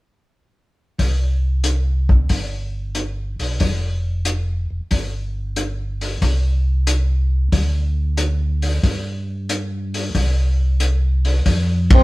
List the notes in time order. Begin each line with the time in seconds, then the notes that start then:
0.99 C2, kick, open hi-hat
1.64 closed hi-hat
2.09 kick
2.29 G1, kick, open hi-hat
2.95 closed hi-hat
3.39 B1, open hi-hat
3.60 F1, kick, open hi-hat
4.25 closed hi-hat
4.70 F1
4.91 G1, kick, open hi-hat
5.56 closed hi-hat
6.01 open hi-hat
6.21 C2, kick, open hi-hat
6.87 closed hi-hat
7.52 D2, kick, open hi-hat
8.17 closed hi-hat
8.62 open hi-hat
8.83 G2, kick, open hi-hat
9.49 closed hi-hat
9.94 open hi-hat
10.14 C2, kick, open hi-hat
10.80 closed hi-hat
11.25 open hi-hat
11.46 F2, kick, open hi-hat
11.90 C4, kick, ride